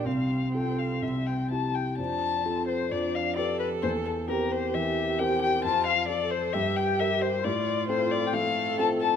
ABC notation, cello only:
X:1
M:4/4
L:1/8
Q:1/4=132
K:F
V:1 name="Cello"
C6- C z | D2 C2 D2 A2- | A2 G6 | F2 A2 G4 |
F4 A4 |]